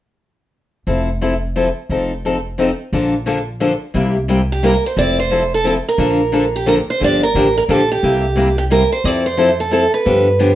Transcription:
0.87 1.69 F1 medium
0.87 1.08 F3 soft
0.87 1.08 C4 medium
0.87 1.09 E4 soft
0.87 1.09 A4 soft
1.21 1.33 F3 medium
1.21 1.33 C4 medium
1.21 1.33 E4 medium
1.21 1.33 A4 medium
1.56 1.67 F3 medium
1.56 1.67 C4 medium
1.56 1.67 E4 medium
1.56 1.68 A4 medium
1.89 2.71 F1 medium
1.89 2.11 F3 soft
1.89 2.11 C4 soft
1.89 2.11 D#4 soft
1.89 2.12 A4 soft
2.25 2.36 F3 medium
2.25 2.36 C4 medium
2.25 2.36 D#4 medium
2.25 2.36 A4 medium
2.58 2.69 F3 medium
2.58 2.69 C4 medium
2.58 2.70 D#4 medium
2.58 2.70 A4 medium
2.93 3.74 A#1 medium
2.93 3.13 D3 soft
2.93 3.14 F3 medium
2.93 3.14 A#3 medium
2.93 3.14 D4 medium
2.93 3.14 A4 medium
3.26 3.37 D3 medium
3.26 3.37 F3 medium
3.26 3.38 A#3 medium
3.26 3.38 D4 medium
3.26 3.38 A4 medium
3.60 3.71 D3 medium
3.60 3.72 F3 medium
3.60 3.72 A#3 medium
3.60 3.72 D4 medium
3.60 3.72 A4 medium
3.94 4.76 C2 medium
3.94 4.15 C3 medium
3.94 4.15 G3 medium
3.94 4.16 A#3 medium
3.94 4.16 E4 medium
3.94 4.16 G4 medium
4.28 4.40 C3 medium
4.28 4.40 G3 medium
4.28 4.40 A#3 medium
4.28 4.40 E4 medium
4.28 4.40 G4 medium
4.52 4.64 G4 medium
4.63 4.74 C3 medium
4.63 4.74 G3 medium
4.63 4.74 A#3 medium
4.63 4.74 E4 medium
4.63 4.74 G4 medium
4.63 4.85 A#4 medium
4.86 4.97 C5 medium
4.96 5.78 F1 medium
4.96 5.17 F3 soft
4.96 5.18 C4 medium
4.96 5.18 E4 medium
4.96 5.18 A4 medium
4.96 5.19 D5 medium
5.20 5.54 C5 medium
5.31 5.42 F3 medium
5.31 5.42 C4 medium
5.31 5.42 E4 medium
5.31 5.42 A4 medium
5.54 5.65 A4 medium
5.64 5.76 F3 medium
5.64 5.76 C4 medium
5.64 5.76 E4 medium
5.64 5.76 A4 medium
5.64 5.72 A4 medium
5.89 6.57 A#4 medium
5.98 6.80 A#1 medium
5.98 6.19 D3 medium
5.98 6.19 F3 medium
5.98 6.19 A#3 medium
5.98 6.20 D4 medium
5.98 6.20 A4 medium
6.32 6.43 D3 medium
6.32 6.44 F3 medium
6.32 6.44 A#3 medium
6.32 6.44 D4 medium
6.32 6.44 A4 medium
6.56 6.68 G4 medium
6.66 6.77 D3 medium
6.66 6.78 F3 medium
6.66 6.78 A#3 medium
6.66 6.78 D4 medium
6.66 6.78 A4 medium
6.66 6.74 A#4 medium
6.90 7.02 C5 medium
7.00 7.28 G1 medium
7.00 7.21 D3 medium
7.00 7.22 F3 medium
7.00 7.22 A#3 medium
7.00 7.22 D4 medium
7.00 7.22 G4 medium
7.04 7.23 D5 medium
7.23 7.56 A#4 medium
7.34 7.63 A1 medium
7.34 7.46 D3 medium
7.34 7.46 F3 medium
7.34 7.46 A#3 medium
7.34 7.47 D4 medium
7.34 7.47 G4 medium
7.58 7.63 A#4 medium
7.68 7.97 A#1 medium
7.68 7.80 D3 medium
7.68 7.80 F3 medium
7.68 7.80 A#3 medium
7.68 7.80 D4 medium
7.68 7.80 G4 medium
7.68 7.89 A4 medium
7.92 8.57 G4 medium
8.03 8.84 C2 medium
8.03 8.24 C3 medium
8.03 8.24 G3 soft
8.03 8.24 A#3 medium
8.03 8.24 E4 medium
8.03 8.24 G4 medium
8.36 8.47 C3 medium
8.36 8.48 G3 medium
8.36 8.48 A#3 medium
8.36 8.48 E4 medium
8.36 8.48 G4 medium
8.58 8.63 G4 medium
8.70 8.81 C3 medium
8.70 8.82 G3 medium
8.70 8.82 A#3 medium
8.70 8.82 E4 medium
8.70 8.82 G4 medium
8.70 8.90 A#4 medium
8.92 9.05 C5 medium
9.04 9.85 F2 medium
9.04 9.25 F3 medium
9.04 9.25 C4 medium
9.04 9.26 E4 medium
9.04 9.26 A4 medium
9.04 9.26 D5 medium
9.26 9.57 C5 medium
9.37 9.49 F3 medium
9.37 9.49 C4 medium
9.37 9.49 E4 medium
9.37 9.49 A4 medium
9.60 9.72 A4 medium
9.71 9.82 F3 medium
9.71 9.83 C4 medium
9.71 9.83 E4 medium
9.71 9.83 A4 medium
9.71 9.93 A4 medium
9.94 10.55 B4 medium
10.05 10.55 G2 medium
10.05 10.26 D3 medium
10.05 10.27 F3 medium
10.05 10.27 B3 medium
10.05 10.27 D4 medium
10.05 10.27 G4 medium
10.39 10.50 D3 medium
10.39 10.51 F3 medium
10.39 10.51 B3 medium
10.39 10.51 D4 medium
10.39 10.51 G4 medium

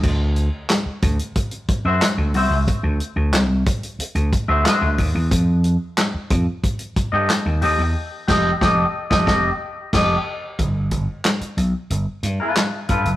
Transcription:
0.03 0.48 D2 medium
0.03 kick loud
0.03 crash medium
0.36 closed hi-hat medium
0.69 snare loud
0.69 clap medium
0.69 closed hi-hat medium
0.86 muted slap bass stroke medium
1.02 1.17 D2 medium
1.02 kick loud
1.02 closed hi-hat medium
1.19 closed hi-hat medium
1.35 kick loud
1.35 closed hi-hat medium
1.51 closed hi-hat medium
1.68 muted slap bass stroke soft
1.68 kick loud
1.68 closed hi-hat medium
1.85 2.00 F#2 medium
1.85 2.05 F#4 medium
1.85 2.04 C5 medium
1.85 2.04 E5 medium
2.02 snare loud
2.02 clap medium
2.02 closed hi-hat loud
2.18 2.32 D2 medium
2.34 2.49 C2 loud
2.34 2.53 F#4 medium
2.34 2.54 C5 medium
2.34 2.54 E5 loud
2.34 open hi-hat medium
2.51 2.65 C#2 medium
2.68 kick loud
2.68 closed hi-hat loud
2.83 2.98 D2 loud
3.00 closed hi-hat medium
3.16 3.31 D2 medium
3.32 3.62 C2 medium
3.32 snare loud
3.32 clap medium
3.32 closed hi-hat medium
3.66 kick loud
3.66 closed hi-hat medium
3.83 closed hi-hat medium
3.99 muted slap bass stroke soft
3.99 closed hi-hat loud
4.15 4.30 D2 medium
4.15 closed hi-hat medium
4.33 kick medium
4.33 closed hi-hat medium
4.48 4.63 D2 medium
4.48 4.63 F#4 medium
4.48 4.65 C5 medium
4.48 4.65 E5 loud
4.64 4.85 F#4 medium
4.64 4.86 C5 medium
4.64 4.86 E5 medium
4.64 snare loud
4.64 clap medium
4.64 closed hi-hat medium
4.81 4.98 D2 medium
4.98 5.13 D#2 medium
4.98 kick loud
4.98 open hi-hat medium
5.15 5.31 E2 loud
5.31 5.75 F2 loud
5.31 kick loud
5.31 closed hi-hat loud
5.64 closed hi-hat medium
5.97 snare loud
5.97 clap medium
5.97 closed hi-hat medium
6.14 muted slap bass stroke soft
6.30 6.45 F2 medium
6.30 kick loud
6.30 closed hi-hat medium
6.64 kick loud
6.64 closed hi-hat medium
6.79 closed hi-hat medium
6.96 muted slap bass stroke soft
6.96 kick loud
6.96 closed hi-hat medium
7.12 7.27 G2 medium
7.12 7.32 G4 medium
7.12 7.31 A4 medium
7.12 7.31 D#5 medium
7.29 snare loud
7.29 clap medium
7.29 closed hi-hat loud
7.46 7.60 D#2 medium
7.62 7.77 D#2 medium
7.62 7.80 G4 medium
7.62 7.81 A4 medium
7.62 7.81 D#5 medium
7.62 open hi-hat medium
7.78 7.93 E2 medium
8.28 8.51 F1 loud
8.28 8.50 G4 loud
8.28 8.51 A4 loud
8.28 8.51 D#5 loud
8.28 kick loud
8.28 snare loud
8.28 crash medium
8.61 8.84 F1 loud
8.61 8.83 G4 loud
8.61 8.84 A4 loud
8.61 8.85 D#5 loud
8.61 kick loud
8.61 snare loud
9.10 9.25 F1 medium
9.10 9.26 G4 medium
9.10 9.25 A4 loud
9.10 9.24 D#5 loud
9.10 kick loud
9.10 snare loud
9.26 9.49 F1 loud
9.26 9.50 G4 loud
9.26 9.50 A4 medium
9.26 9.49 D#5 medium
9.26 kick loud
9.26 snare loud
9.93 10.15 F1 loud
9.93 10.15 G4 loud
9.93 10.16 A4 medium
9.93 10.16 D#5 medium
9.93 kick loud
9.93 snare loud
9.93 crash medium
10.59 10.88 G1 medium
10.59 kick medium
10.59 closed hi-hat loud
10.91 11.06 G1 medium
10.91 kick medium
10.91 closed hi-hat medium
11.24 snare loud
11.24 clap medium
11.24 closed hi-hat loud
11.41 muted slap bass stroke soft
11.41 closed hi-hat soft
11.57 11.72 B1 medium
11.57 closed hi-hat medium
11.90 12.05 G1 loud
11.90 closed hi-hat medium
12.23 12.38 G2 loud
12.23 closed hi-hat medium
12.40 12.61 F4 medium
12.40 12.61 A4 medium
12.40 12.60 B4 medium
12.56 snare loud
12.56 clap medium
12.56 closed hi-hat loud
12.89 13.04 G2 medium
12.89 13.08 F4 medium
12.89 13.08 A4 medium
12.89 13.09 B4 medium
12.89 kick medium
12.89 closed hi-hat medium
13.05 13.16 F#1 medium
13.05 closed hi-hat medium

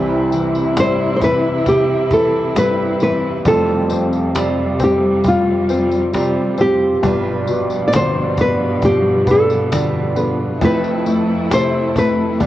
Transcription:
0.00 3.42 C2 medium
0.00 0.76 C3 medium
0.00 3.42 C3 medium
0.00 0.77 E3 medium
0.00 0.76 G3 medium
0.00 0.77 C4 medium
0.00 3.42 C4 medium
0.00 0.76 E4 medium
0.00 3.42 E4 medium
0.00 0.82 G4 medium
0.00 0.77 B4 medium
0.32 1.21 E3 medium
0.32 cajon slap soft
0.32 tambourine medium
0.55 tambourine soft
0.76 2.52 G2 soft
0.76 2.12 G3 medium
0.76 2.11 C4 medium
0.76 2.10 E4 medium
0.76 1.15 C5 loud
0.76 cajon slap loud
0.76 tambourine medium
1.16 1.22 C5 medium
1.21 2.11 E3 medium
1.21 1.69 B4 medium
1.21 cajon bass medium
1.21 tambourine soft
1.66 3.42 C3 soft
1.66 2.13 G4 medium
1.66 cajon bass medium
1.66 cajon slap soft
1.66 tambourine soft
2.10 3.00 E3 medium
2.10 2.54 G3 soft
2.10 2.55 C4 soft
2.10 2.56 E4 soft
2.10 2.58 A4 medium
2.10 2.55 B4 medium
2.10 cajon bass medium
2.10 tambourine soft
2.55 3.43 G2 medium
2.55 3.00 G3 medium
2.55 3.01 C4 medium
2.55 3.00 E4 medium
2.55 2.99 B4 medium
2.55 cajon slap loud
2.55 tambourine medium
3.00 3.44 E3 medium
3.00 3.45 G3 soft
3.00 3.45 C4 medium
3.00 3.46 E4 medium
3.00 3.45 B4 medium
3.00 3.43 B4 loud
3.00 cajon slap soft
3.00 tambourine medium
3.45 7.00 F1 medium
3.45 7.00 F2 medium
3.45 7.00 C3 medium
3.45 4.38 F3 medium
3.45 7.00 G3 medium
3.45 4.34 G3 medium
3.45 4.35 C4 medium
3.45 4.36 F4 medium
3.45 4.77 A4 medium
3.45 4.36 C5 medium
3.45 cajon bass loud
3.45 tambourine medium
3.90 4.78 C4 medium
3.90 cajon slap soft
3.90 tambourine medium
4.13 tambourine soft
4.35 6.10 C3 soft
4.35 5.73 G3 medium
4.35 5.70 C4 medium
4.35 5.70 F4 medium
4.35 5.68 C5 medium
4.35 cajon slap loud
4.35 tambourine medium
4.79 5.68 C4 medium
4.79 cajon bass medium
4.79 tambourine medium
4.84 5.28 G4 medium
5.24 6.99 G3 medium
5.24 cajon bass medium
5.24 cajon slap soft
5.24 tambourine soft
5.28 6.64 F4 medium
5.69 6.57 C4 medium
5.69 6.13 C4 soft
5.69 6.14 F4 soft
5.69 6.14 C5 medium
5.69 cajon slap soft
5.69 tambourine soft
5.91 tambourine soft
6.13 7.01 C3 medium
6.13 6.58 G3 medium
6.13 6.59 C4 medium
6.13 6.59 F4 medium
6.13 6.58 C5 medium
6.13 cajon slap loud
6.13 tambourine medium
6.58 7.02 C4 medium
6.58 7.04 C4 soft
6.58 7.04 F4 soft
6.58 7.87 G4 loud
6.58 7.04 C5 medium
6.58 cajon slap soft
6.58 tambourine medium
7.03 10.57 G1 medium
7.03 10.58 G2 medium
7.03 10.58 B2 medium
7.03 10.58 F3 medium
7.03 7.92 G3 medium
7.03 7.93 D4 medium
7.03 7.94 F4 medium
7.03 7.94 B4 medium
7.03 cajon bass loud
7.03 tambourine soft
7.47 9.24 B2 medium
7.47 cajon slap soft
7.47 tambourine medium
7.70 tambourine soft
7.88 7.94 D5 medium
7.93 9.68 D3 soft
7.93 9.27 G3 medium
7.93 9.28 D4 medium
7.93 9.27 F4 medium
7.93 8.36 C5 loud
7.93 cajon slap loud
7.93 tambourine medium
8.37 9.26 B3 medium
8.37 8.81 B4 medium
8.37 cajon bass medium
8.37 tambourine soft
8.82 10.58 F3 medium
8.82 9.30 G4 loud
8.82 cajon bass medium
8.82 cajon slap soft
8.82 tambourine soft
9.27 10.14 B3 medium
9.27 9.72 D4 soft
9.27 9.72 F4 soft
9.27 10.23 A4 medium
9.27 9.72 B4 soft
9.27 cajon bass medium
9.27 tambourine soft
9.50 tambourine soft
9.72 10.59 D3 medium
9.72 10.17 G3 medium
9.72 10.17 D4 medium
9.72 10.16 F4 medium
9.72 10.15 B4 medium
9.72 cajon slap loud
9.72 tambourine medium
10.16 10.60 B3 medium
10.16 10.61 D4 soft
10.16 10.62 F4 medium
10.16 10.61 B4 soft
10.16 cajon slap soft
10.16 tambourine medium
10.23 10.67 G4 medium
10.61 12.37 F1 medium
10.61 12.37 F2 medium
10.61 12.39 F2 medium
10.61 11.55 F3 medium
10.61 12.39 A3 medium
10.61 11.49 A3 medium
10.61 11.50 C4 medium
10.61 12.39 E4 medium
10.61 11.51 E4 medium
10.61 11.51 A4 medium
10.61 11.53 B4 medium
10.61 cajon bass medium
10.61 tambourine soft
10.84 tambourine soft
11.06 11.94 A3 medium
11.06 cajon slap soft
11.06 tambourine medium
11.50 12.38 C3 medium
11.50 12.40 A3 medium
11.50 12.40 C4 medium
11.50 12.41 E4 medium
11.50 12.41 A4 medium
11.50 11.98 C5 medium
11.50 cajon slap loud
11.50 tambourine medium
11.96 12.39 A3 medium
11.96 12.46 B4 medium
11.96 cajon bass medium
11.96 tambourine soft
12.40 12.46 G1 medium
12.40 12.46 G2 medium
12.40 12.46 F3 medium
12.40 12.46 G3 medium
12.40 12.46 B3 medium
12.40 12.46 D4 medium
12.40 12.46 F4 medium
12.40 12.46 B4 medium
12.40 cajon bass medium
12.40 cajon slap soft
12.40 tambourine soft

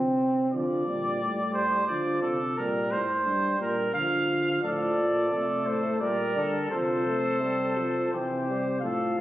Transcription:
0.00 0.51 C3 medium
0.00 0.53 C4 medium
0.53 0.86 D3 medium
0.53 0.86 F3 medium
0.53 1.50 D5 medium
0.86 1.23 A#2 medium
0.86 1.86 G3 medium
1.21 1.88 A2 medium
1.53 1.87 C5 medium
1.87 2.24 D3 medium
1.87 2.40 F3 medium
1.87 2.21 D5 medium
2.22 2.56 C3 medium
2.22 2.59 A4 medium
2.57 2.92 A#2 medium
2.57 3.00 G3 medium
2.57 2.93 A#4 medium
2.91 3.24 A2 medium
2.91 3.60 C5 medium
3.25 3.59 G2 medium
3.25 3.90 G3 medium
3.60 3.95 A#2 medium
3.60 3.94 A#4 medium
3.94 4.62 D3 medium
3.94 4.63 F3 medium
3.94 4.62 F5 medium
4.62 4.95 A2 medium
4.62 5.29 F3 medium
4.62 5.29 A4 medium
4.62 5.67 D5 medium
4.97 5.30 A#2 medium
5.31 5.65 C3 medium
5.31 6.04 A3 medium
5.31 6.00 A4 medium
5.66 6.00 A2 medium
5.66 5.99 C5 medium
6.00 6.35 A#2 medium
6.00 6.71 G3 medium
6.00 6.70 A#4 medium
6.00 6.35 D5 medium
6.35 6.70 D3 medium
6.35 6.70 A4 medium
6.71 7.94 C3 medium
6.71 7.06 F3 medium
6.71 8.16 A4 medium
6.71 8.10 C5 medium
7.07 7.44 A3 medium
7.43 7.79 G3 medium
7.78 8.12 F3 medium
8.11 8.81 C3 medium
8.11 8.47 E3 medium
8.11 8.67 G4 medium
8.11 8.80 C5 medium
8.48 8.82 G3 medium
8.81 9.15 A2 medium
8.81 9.21 F3 medium
8.81 9.16 A4 medium
8.81 9.21 F5 medium
9.17 9.21 A2 medium

